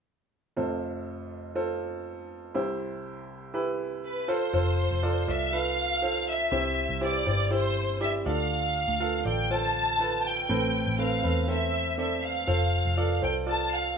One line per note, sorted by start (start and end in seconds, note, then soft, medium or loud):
0.56 2.51 F1 soft
0.56 2.51 F2 soft
0.56 1.38 F4 medium
0.56 1.38 A4 soft
0.56 1.38 C5 medium
1.55 2.37 F4 medium
1.55 2.37 A4 medium
1.55 2.37 C5 medium
2.55 4.25 C2 soft
2.55 4.25 C3 soft
2.55 3.36 E4 medium
2.55 3.36 G4 medium
2.55 3.36 C5 medium
3.54 4.29 E4 medium
3.54 4.29 G4 medium
3.54 4.29 B4 medium
4.05 4.28 B4 medium
4.28 4.49 F4 medium
4.28 4.49 A4 medium
4.28 4.49 C5 medium
4.28 5.29 C5 medium
4.53 4.88 F1 medium
4.53 4.94 F4 medium
4.53 4.94 A4 medium
4.53 4.94 C5 medium
4.91 5.25 F1 medium
5.03 5.23 F4 medium
5.03 5.23 A4 medium
5.03 5.24 D5 medium
5.28 6.48 C2 medium
5.28 5.48 F4 medium
5.28 5.48 A4 soft
5.28 5.48 D5 medium
5.28 5.54 E5 medium
5.52 5.93 F4 medium
5.52 5.94 A4 medium
5.52 5.94 B4 medium
5.52 6.28 F5 medium
6.02 6.43 F4 medium
6.02 6.43 A4 soft
6.02 6.43 C5 medium
6.28 6.98 E5 medium
6.52 6.87 C2 medium
6.52 7.23 C3 soft
6.52 6.93 E4 medium
6.52 6.93 G4 medium
6.52 6.93 C5 medium
6.89 7.24 C2 medium
7.01 7.22 E4 medium
7.01 7.22 G4 medium
7.01 7.22 C5 medium
7.01 7.52 D5 medium
7.26 8.22 G1 medium
7.26 7.47 E4 soft
7.26 7.47 G4 soft
7.26 7.47 C5 medium
7.51 7.92 E4 medium
7.51 7.92 G4 medium
7.51 7.92 C5 medium
7.51 7.98 C5 medium
8.01 8.26 E4 medium
8.01 8.26 G4 medium
8.01 8.24 D5 medium
8.01 8.13 E5 medium
8.26 8.84 D2 medium
8.26 8.96 D3 medium
8.26 8.87 F4 medium
8.26 8.87 A4 medium
8.26 8.87 D5 medium
8.26 9.22 F5 medium
8.88 9.23 D2 medium
9.00 9.21 F4 medium
9.00 9.21 A4 medium
9.00 9.21 F5 medium
9.25 10.45 A1 medium
9.25 9.46 F4 soft
9.25 9.46 A4 soft
9.25 9.46 D5 medium
9.25 9.51 G5 medium
9.50 9.91 F4 medium
9.50 9.91 A4 medium
9.50 9.91 C5 medium
9.50 10.25 A5 loud
10.00 10.40 F4 medium
10.00 10.41 A4 medium
10.00 10.41 B4 medium
10.26 11.00 G5 medium
10.49 10.84 A1 medium
10.49 11.20 A2 soft
10.49 10.90 C4 medium
10.49 10.90 A4 medium
10.49 10.90 B4 medium
10.87 11.21 A1 medium
10.99 11.19 C4 medium
10.99 11.19 A4 soft
10.99 11.19 B4 medium
10.99 11.46 F5 medium
11.23 12.44 E2 medium
11.23 11.44 C4 soft
11.23 11.44 A4 soft
11.23 11.44 B4 medium
11.48 11.89 C4 medium
11.48 11.89 A4 medium
11.48 11.89 C5 medium
11.48 11.98 E5 medium
11.98 12.39 C4 medium
11.98 12.39 A4 medium
11.98 12.39 D5 medium
11.98 12.22 E5 medium
12.25 13.23 F5 medium
12.47 12.83 F1 medium
12.47 12.88 F4 medium
12.47 12.88 A4 medium
12.47 12.88 C5 medium
12.85 13.20 F1 medium
12.97 13.18 F4 medium
12.97 13.18 A4 medium
12.97 13.18 D5 medium
13.22 13.98 C2 medium
13.22 13.42 F4 soft
13.22 13.42 A4 soft
13.22 13.43 C5 medium
13.22 13.35 G5 medium
13.46 13.87 F4 medium
13.46 13.88 A4 soft
13.46 13.88 D5 medium
13.46 13.71 A5 medium
13.73 13.97 F5 medium